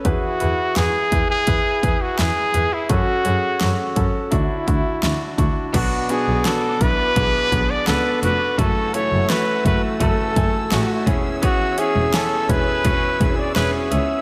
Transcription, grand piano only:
<<
  \new Staff \with { instrumentName = "Grand piano" } { \time 4/4 \key e \mixolydian \tempo 4 = 84 <e' gis' b'>8 <e' gis' b'>8 <e' gis' b'>8 <e' gis' b'>8 <e' gis' b'>8 <e' gis' b'>8 <e' gis' b'>8 <e' gis' b'>8 | <cis' fis' a'>8 <cis' fis' gis'>8 <cis' fis' a'>8 <cis' fis' a'>8 <d' e' fis'>8 <d' e' fis'>8 <d' e' fis'>8 <d' e' fis'>8 | <b d' fis'>8 <b d' fis'>8 <b d' fis'>8 <b d' e'>8 <b d' gis'>8 <b d' gis'>8 <b d' a'>8 <b d' fis'>8 | <a e' fis'>8 <a e' a'>8 <a e' fis'>8 <a e' fis'>8 <a e' a'>8 <a e' gis''>8 <a e' fis'>8 <cis' e' gis'>8~ |
<cis' e' gis'>8 <cis' e' gis'>8 <cis' e' gis''>8 <cis' e' gis'>8 <cis' e' fis'>8 <cis' e' gis'>8 <cis' e' gis'>8 <cis' e' gis'>8 | }
  \new Staff \with { instrumentName = "Grand piano" } { \clef bass \time 4/4 \key e \mixolydian e4. r2 r8 | r2 d4. r8 | b,4. r2 r8 | r2. r8 e8~ |
e4 r2. | }
>>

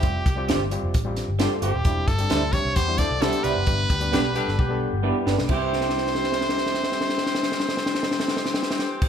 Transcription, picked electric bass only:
\new Staff \with { instrumentName = "Picked electric bass" } { \clef bass \time 4/4 \key c \major \tempo 4 = 132 f,,8 c,8 g,,8. f,,16 a,,8. g,,8 r16 g,,16 ees,,16 | e,,8 g,,8 d,8. c,16 e,8. c,8 r16 c,16 fis,,16 | g,,8 d,8 b,,8. g,,16 b,,8. g,,8 r16 g,,16 b,,16 | c,1~ |
c,1 | }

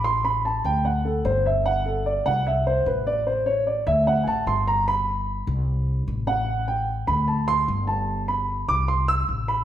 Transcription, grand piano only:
\new Staff \with { instrumentName = "Grand piano" } { \time 4/4 \key a \dorian \tempo 4 = 149 c'''8 b''8 a''8 g''8 fis''8 a'8 c''8 e''8 | fis''8 a'8 d''8 fis''8 e''8 c''8 b'8 d''8 | c''8 cis''8 d''8 e''8 fis''8 <aes'' a''>8 c'''8 bes''8 | b''2. r8 fis''8~ |
fis''8 g''4 b''8 a''8 c'''8 r8 a''8~ | a''8 b''4 d'''8 c'''8 e'''8 r8 b''8 | }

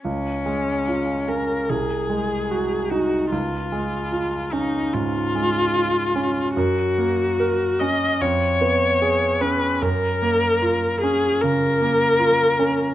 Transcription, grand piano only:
\new Staff \with { instrumentName = "Grand piano" } { \time 4/4 \key des \major \tempo 4 = 74 des,8 aes8 f'8 des'8 c,8 aes8 ges'8 ees'8 | des,8 aes8 f'8 des'8 aes,8 aes8 f'8 des'8 | ges,8 bes8 bes'8 des'8 f,8 ces'8 aes'8 des'8 | ges,8 bes8 f'8 des'8 des8 bes8 f'8 des'8 | }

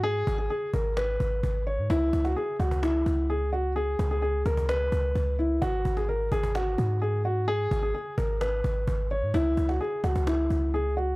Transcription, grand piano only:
\new Staff \with { instrumentName = "Grand piano" } { \time 4/4 \key gis \minor \tempo 4 = 129 gis'8. gis'16 gis'8 ais'8 b'4. cis''8 | e'8. fis'16 gis'8 fis'8 e'4 gis'8 fis'8 | gis'8. gis'16 gis'8 ais'8 b'4. e'8 | fis'8. gis'16 ais'8 gis'8 fis'4 gis'8 fis'8 |
gis'8. gis'16 gis'8 ais'8 b'4. cis''8 | e'8. fis'16 gis'8 fis'8 e'4 gis'8 fis'8 | }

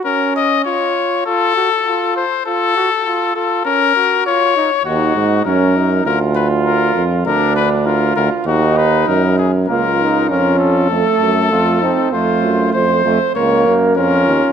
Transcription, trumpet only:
\new Staff \with { instrumentName = "Trumpet" } { \time 4/4 \key bes \phrygian \tempo 4 = 99 bes'8 ees''8 des''4 a'4. c''8 | a'4. a'8 bes'4 des''4 | ges'4 bes'4 bes'8 ces''8 bes'8 r8 | bes'8 ces''8 bes'8 bes'8 ges'8 ces''8 bes'8 aes'8 |
bes'4 bes'8 a'2~ a'8 | c''4 c''4 des''8 r8 bes'4 | }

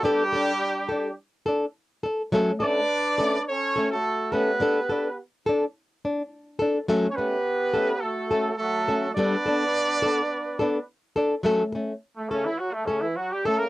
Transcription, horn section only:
\new Staff \with { instrumentName = "Horn section" } { \time 4/4 \key g \lydian \tempo 4 = 105 <g d' g'>2 r2 | r8 <d' b' d''>4. <cis' a' cis''>8. <a fis' a'>8. <b g' b'>8~ | <b g' b'>4 r2. | r16. <cis' cis''>32 <b g' b'>4. <a fis' a'>4 <fis a fis' a'>4 |
<b d' b' d''>2. r4 | r4 r16 a16 <cis cis'>16 <e e'>16 <fis fis'>16 a16 <cis cis'>16 <e e'>16 <fis fis'>16 <g g'>16 <a a'>16 <ais ais'>16 | }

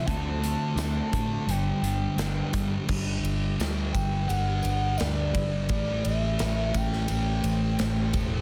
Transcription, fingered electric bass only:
\new Staff \with { instrumentName = "Fingered electric bass" } { \clef bass \time 4/4 \key g \major \tempo 4 = 85 d,4 d,8 a,8 g,,8 g,,8 g,,8 g,8 | g,,8 g,,8 d,8 g,,8 g,,8 g,,8 d,8 g,,8 | a,,8 a,,8 a,,8 a,,8 a,,8 a,,8 a,,8 e,,8 | }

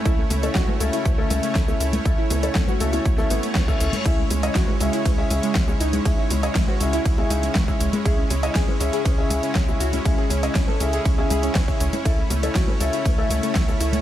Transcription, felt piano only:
\new Staff \with { instrumentName = "Felt piano" } { \time 4/4 \key cis \minor \tempo 4 = 120 <cis cis' e' a' e''>16 r8 <cis cis' e' a' cis''>16 r8 <cis cis' e' a' e''>8 r16 <cis cis' e' a' e''>16 <cis cis' e' a' e''>8 r16 <cis cis' e' a' e''>16 r8 | <cis cis' e' a' e''>16 r8 <cis cis' e' a' cis''>16 r8 <cis cis' e' a' e''>8 r16 <cis cis' e' a' e''>16 r8. <cis cis' e' a' e''>8 r16 | <cis cis' e' gis' e''>16 r8 <cis cis' e' gis' dis''>16 r8 <cis cis' e' gis' e''>8 r16 <cis cis' e' gis' e''>16 <cis cis' e' gis' e''>8 r16 <cis cis' e' gis' e''>16 r8 | <cis cis' e' gis' e''>16 r8 <cis cis' e' gis' dis''>16 r8 <cis cis' e' gis' e''>8 r16 <cis cis' e' gis' e''>16 <cis cis' e' gis' e''>8 r16 <cis cis' e' gis' e''>16 r8 |
<cis cis' e' gis' e''>16 r8 <cis cis' e' gis' dis''>16 r8 <cis cis' e' gis' e''>8 r16 <cis cis' e' gis' e''>16 <cis cis' e' gis' e''>8 r16 <cis cis' e' gis' e''>16 r8 | <cis cis' e' gis' e''>16 r8 <cis cis' e' gis' dis''>16 r8 <cis cis' e' gis' e''>8 r16 <cis cis' e' gis' e''>16 <cis cis' e' gis' e''>8 r16 <cis cis' e' gis' e''>16 r8 | <cis cis' e' a' e''>16 r8 <cis cis' e' a' cis''>16 r8 <cis cis' e' a' e''>8 r16 <cis cis' e' a' e''>16 <cis cis' e' a' e''>8 r16 <cis cis' e' a' e''>16 r8 | }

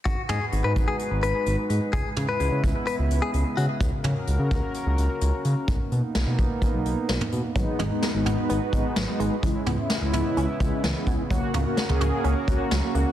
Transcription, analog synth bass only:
\new Staff \with { instrumentName = "Analog synth bass" } { \clef bass \time 4/4 \key gis \minor \tempo 4 = 128 gis,,16 r16 gis,16 r16 gis,,16 gis,16 gis,,16 r8 gis,,16 gis,,16 r16 gis,,16 r16 gis,16 r16 | cis,16 r16 cis16 r16 cis,16 cis16 cis,16 r8 cis,16 cis,16 r16 cis,16 r16 cis16 r16 | cis,16 r16 cis16 r16 cis,16 cis16 cis,16 r8 cis,16 cis,16 r16 cis,16 r16 cis16 r16 | b,,16 r16 b,16 r16 b,,16 b,16 b,,16 r8 b,,16 b,,16 r16 b,,16 r16 b,16 r16 |
gis,,16 r16 gis,,16 r8 gis,,16 gis,,16 r16 gis,,16 r16 gis,,16 r16 gis,,16 r16 gis,,16 r16 | cis,16 r16 cis,16 r8 cis,16 cis,16 r16 cis,16 r16 cis,16 r16 cis,16 r16 cis,16 r16 | cis,16 r16 cis,16 r8 cis,16 cis,16 r16 cis,16 r16 cis,16 r16 cis,16 r16 cis,16 r16 | }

